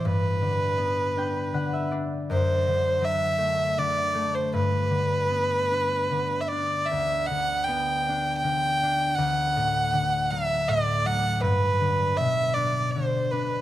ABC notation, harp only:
X:1
M:3/4
L:1/16
Q:1/4=79
K:G
V:1 name="Harp"
z6 g2 f e d2 | z12 | z12 | z12 |
z12 | z12 |]
V:2 name="Harp" clef=bass
G,,2 D,2 B,2 D2 D,2 D2 | F,,2 D,2 F,2 A,2 D,2 A,2 | G,,2 D,2 B,2 D2 D,2 D2 | D,,2 D,2 B,2 D2 D,2 D2 |
D,,2 A,,2 D,2 F,2 A,,2 F,2 | G,,2 D,2 B,,2 D2 D,2 D2 |]